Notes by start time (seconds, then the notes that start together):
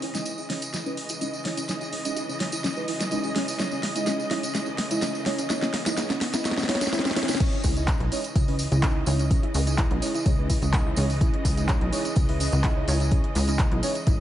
Already playing: C#3 E3 G#3 D#5, riser
0.02 E4, open hi-hat
0.14 G#3 C#4 D#4 E4 D#5, snare, closed hi-hat, tambourine
0.25 closed hi-hat, tambourine
0.38 E4, tambourine
0.50 G#3 C#4 D#4 E4 C#5, snare, open hi-hat
0.62 closed hi-hat, tambourine
0.74 E4, snare, closed hi-hat, tambourine
0.86 G#3 C#4 D#4 E4 B4, tambourine
0.97 open hi-hat
1.09 E4, closed hi-hat, tambourine
1.21 G#3 C#4 D#4 E4 D#5, closed hi-hat, tambourine
1.33 tambourine
1.45 G#3 C#4 D#4 E4 C#5, snare, open hi-hat
1.57 C#4, closed hi-hat, tambourine
1.69 G#3 C#4 D#4 E4 C#5, snare, closed hi-hat, tambourine
1.81 E4, tambourine
1.93 C#4, open hi-hat
2.05 G#3 C#4 D#4 E4 D#5, closed hi-hat, tambourine
2.16 E4, closed hi-hat, tambourine
2.29 C#4, tambourine
2.40 G#3 C#4 D#4 E4 C#5, snare, open hi-hat
2.52 E4, closed hi-hat, tambourine
2.64 C#4, snare, closed hi-hat, tambourine
2.76 G#3 C#4 D#4 E4 B4, tambourine
2.88 E4, open hi-hat
3.00 C#4, snare, closed hi-hat, tambourine
3.11 G#3 C#4 D#4 E4 D#5, closed hi-hat, tambourine
3.23 E4, tambourine
3.35 G#3 C#4 D#4 E4 C#5, snare, open hi-hat
3.48 open hi-hat, tambourine
3.59 G#3 C#4 D#4 E4 C#5, snare, closed hi-hat, tambourine
3.71 C#4, tambourine
3.83 snare, open hi-hat
3.96 G#3 C#4 D#4 E4 D#5, closed hi-hat, tambourine
4.06 C#4, snare, closed hi-hat, tambourine
4.20 tambourine
4.31 G#3 C#4 D#4 E4 C#5, snare, open hi-hat
4.43 C#4, closed hi-hat, tambourine
4.54 G#3 C#4 D#4 E4 C#5, snare, closed hi-hat, tambourine
4.66 C#4, tambourine
4.78 snare, open hi-hat
4.91 G#3 C#4 D#4 E4 D#5, closed hi-hat, tambourine
5.01 C#4, snare, closed hi-hat, tambourine
5.15 tambourine
5.26 G#3 C#4 D#4 E4 C#5, snare, open hi-hat
5.38 C#4, closed hi-hat, tambourine
5.49 G#3 C#4 D#4 E4 C#5, snare, closed hi-hat, tambourine
5.62 C#4, snare, tambourine
5.74 snare, open hi-hat
5.86 G#3 C#4 D#4 E4 D#5, snare, closed hi-hat, tambourine
5.97 G#3 C#4 D#4 E4 C#5, snare, closed hi-hat, tambourine
6.10 C#4, snare, tambourine
6.21 snare, open hi-hat
6.33 G#3 C#4 D#4 E4 D#5, snare, closed hi-hat, tambourine
6.45 G#3 C#4 D#4 E4 C#5, snare, closed hi-hat, tambourine
6.51 snare
6.57 C#4, snare, tambourine
6.63 snare
6.69 G#3 C#4 D#4 E4 C#5, snare, open hi-hat
6.75 snare
6.81 C#4, snare, closed hi-hat, tambourine
6.87 snare
6.93 G#3 C#4 D#4 E4 C#5, snare, closed hi-hat, tambourine
6.99 snare
7.05 C#4, snare, tambourine
7.11 snare
7.16 G#3 C#4 D#4 E4 C#5, snare, open hi-hat
7.23 snare
7.28 C#4, snare, open hi-hat, tambourine
7.35 snare
7.40 C#3 E3 G#3 C#4 D#4 E4 C#5 D#5, kick, closed hi-hat, crash, tambourine
7.53 closed hi-hat
7.64 C#2 E4, kick, open hi-hat, tambourine
7.76 G#3 C#4 D#4 E4 D#5, closed hi-hat, tambourine
7.88 kick, clap, closed hi-hat, tambourine
8.00 B1 E4, closed hi-hat
8.12 G#3 C#4 D#4 E4 C#5, open hi-hat, tambourine
8.24 closed hi-hat, tambourine
8.35 C#2 E4, kick, closed hi-hat, tambourine
8.48 G#3 C#4 D#4 E4 B4, open hi-hat
8.59 open hi-hat, tambourine
8.72 C#2 E4, closed hi-hat, tambourine
8.83 G#3 C#4 D#4 E4 D#5, kick, clap, closed hi-hat
9.06 C#2 G#3 C#4 D#4 E4 C#5, open hi-hat, tambourine
9.19 C#4, closed hi-hat, tambourine
9.31 G#3 C#4 D#4 E4 C#5, kick, closed hi-hat, tambourine
9.43 E4, closed hi-hat
9.54 C#2 C#4, open hi-hat, tambourine
9.67 G#3 C#4 D#4 E4 D#5, closed hi-hat, tambourine
9.78 E4, kick, clap, closed hi-hat, tambourine
9.91 B1 C#4, closed hi-hat
10.02 G#3 C#4 D#4 E4 C#5, open hi-hat, tambourine
10.15 E4, closed hi-hat, tambourine
10.26 C#2 C#4, kick, closed hi-hat, tambourine
10.38 G#3 C#4 D#4 E4 B4
10.50 E4, kick, open hi-hat, tambourine
10.62 C#2 C#4, closed hi-hat, tambourine
10.73 G#3 C#4 D#4 E4 D#5, kick, clap, closed hi-hat, tambourine
10.86 E4
10.96 C#2 G#3 C#4 D#4 E4 C#5, open hi-hat, tambourine
11.10 open hi-hat, tambourine
11.21 G#3 C#4 D#4 E4 C#5, kick, closed hi-hat, tambourine
11.34 C#4, closed hi-hat
11.45 C#2, kick, open hi-hat, tambourine
11.57 G#3 C#4 D#4 E4 D#5, closed hi-hat, tambourine
11.68 C#4, kick, clap, closed hi-hat, tambourine
11.81 B1, closed hi-hat
11.92 G#3 C#4 D#4 E4 C#5, open hi-hat, tambourine
12.05 C#4, closed hi-hat, tambourine
12.16 C#2, kick, closed hi-hat, tambourine
12.29 G#3 C#4 D#4 E4 B4, open hi-hat
12.40 C#4, open hi-hat, tambourine
12.52 C#2, closed hi-hat, tambourine
12.63 G#3 C#4 D#4 E4 D#5, kick, clap, closed hi-hat, tambourine
12.77 C#4
12.88 C#2 G#3 C#4 D#4 E4 C#5, open hi-hat, tambourine
13.00 E4, closed hi-hat, tambourine
13.11 G#3 C#4 D#4 E4 C#5, kick, closed hi-hat, tambourine
13.24 closed hi-hat
13.35 C#2 E4, open hi-hat, tambourine
13.48 G#3 C#4 D#4 E4 D#5, closed hi-hat, tambourine
13.59 kick, clap, closed hi-hat, tambourine
13.72 B1 E4, closed hi-hat
13.83 G#3 C#4 D#4 E4 C#5, open hi-hat, tambourine
13.95 closed hi-hat, tambourine
14.07 G#1 E4, kick, closed hi-hat, tambourine